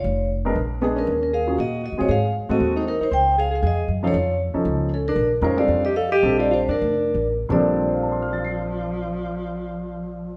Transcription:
0.00 0.27 F4 medium
0.00 0.29 C#5 medium
0.04 0.53 F1 medium
0.45 0.55 G#3 medium
0.45 0.55 B3 medium
0.45 0.55 D4 medium
0.45 0.55 A#4 medium
0.55 1.04 A#1 medium
0.81 1.07 G#3 medium
0.81 0.88 B3 medium
0.81 1.07 B3 soft
0.81 1.07 D4 medium
0.81 1.07 G#4 medium
0.81 0.90 G#4 medium
0.95 1.19 C#4 medium
0.95 1.22 A#4 medium
1.07 1.55 D#2 medium
1.20 1.31 C#4 medium
1.20 1.33 A#4 medium
1.33 1.56 G#4 medium
1.33 1.59 F5 medium
1.47 1.57 F#3 medium
1.47 1.57 C#4 soft
1.47 1.57 F4 soft
1.47 1.57 G#4 medium
1.58 1.90 A#2 medium
1.58 1.82 F#4 medium
1.58 1.83 D#5 medium
1.83 1.97 F#4 medium
1.83 2.00 D#5 medium
1.92 2.00 C#3 medium
1.98 2.08 A#2 medium
1.98 2.08 G#3 medium
1.98 2.08 C4 medium
1.98 2.08 F4 medium
1.98 2.08 F#4 soft
1.98 2.08 G#4 medium
1.98 2.10 C#5 medium
2.08 2.46 G#2 medium
2.08 2.32 G#4 medium
2.08 2.34 F5 medium
2.49 2.59 A2 medium
2.49 2.84 G#3 medium
2.49 2.84 C4 medium
2.49 2.73 F#4 medium
2.49 2.84 F#4 medium
2.49 2.84 A4 medium
2.49 2.74 D#5 medium
2.60 2.98 D#2 medium
2.75 2.85 D#4 medium
2.75 2.86 C5 medium
2.87 3.00 D#4 medium
2.87 3.02 A#4 medium
3.01 3.11 D#4 medium
3.01 3.12 C5 medium
3.01 muted upright bass stroke soft
3.11 3.60 C#2 medium
3.11 3.35 C5 medium
3.11 3.36 G5 loud
3.38 3.50 G#4 medium
3.38 3.53 F5 medium
3.51 3.61 G#4 medium
3.55 3.65 F5 medium
3.62 3.86 F2 medium
3.62 3.86 G#4 medium
3.67 3.89 D#5 medium
3.88 4.12 F#2 medium
4.03 4.13 F3 medium
4.03 4.13 C#4 medium
4.03 4.13 D#4 medium
4.03 4.37 F4 medium
4.03 4.13 A4 medium
4.08 4.39 C#5 medium
4.14 4.51 F2 medium
4.54 4.88 F3 medium
4.54 4.88 C#4 medium
4.54 4.88 D#4 medium
4.54 4.88 A4 medium
4.54 muted upright bass stroke soft
4.65 5.14 C#2 medium
4.93 5.05 C#4 medium
4.93 5.07 A4 medium
5.08 5.31 D4 medium
5.08 5.30 A#4 medium
5.16 5.40 A#1 medium
5.41 5.66 F2 medium
5.41 5.55 G#3 medium
5.41 5.55 C#4 medium
5.41 5.56 D#4 medium
5.41 5.56 F4 medium
5.41 5.56 A#4 medium
5.41 5.58 C5 medium
5.57 5.80 G3 medium
5.57 5.80 C4 medium
5.57 5.81 D4 medium
5.57 5.82 F4 medium
5.57 5.81 A4 medium
5.57 5.85 D5 medium
5.68 6.20 F2 medium
5.85 5.95 G4 medium
5.85 5.95 D#5 medium
5.96 6.10 A4 medium
5.96 6.10 F5 medium
6.12 6.38 G4 medium
6.12 6.41 D#5 medium
6.23 6.66 A#1 medium
6.23 6.66 G3 medium
6.23 6.66 C4 medium
6.23 6.66 D4 medium
6.23 6.66 A4 medium
6.39 6.50 F4 medium
6.39 6.53 D5 medium
6.51 6.59 F4 medium
6.51 6.61 C5 medium
6.68 6.81 F2 medium
6.68 7.31 D4 medium
6.68 7.32 A#4 medium
6.82 7.12 F1 medium
7.14 7.47 A1 medium
7.49 10.37 A#1 medium
7.49 10.37 A#2 medium
7.49 10.37 F3 medium
7.49 10.37 G3 medium
7.49 10.37 C4 medium
7.49 10.37 D4 medium
7.49 10.37 A4 medium
7.49 10.37 D5 medium
7.88 10.37 C5 soft
7.95 10.37 F5 soft
8.03 10.37 A5 soft
8.12 10.37 C6 soft
8.22 10.37 F6 soft
8.33 10.37 A6 soft
8.45 10.37 C7 soft

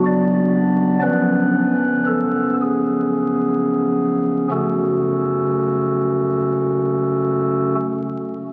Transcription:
0.00 0.99 F#1 medium
0.00 0.99 F#2 medium
0.00 0.99 F#3 medium
0.00 0.99 B3 medium
0.00 0.99 D4 medium
0.06 0.99 D5 loud
1.02 4.48 F#1 medium
1.02 4.48 F#2 medium
1.02 4.48 F3 medium
1.02 4.48 B3 medium
1.02 4.48 C#4 medium
1.02 2.04 B4 loud
2.07 2.54 A4 medium
2.62 4.48 G#4 medium
4.51 7.75 F#1 medium
4.51 7.74 F#2 medium
4.51 7.74 C#3 soft
4.51 7.75 A3 medium
4.51 7.75 C#4 medium
4.51 7.75 F#4 soft
4.51 7.75 A4 medium

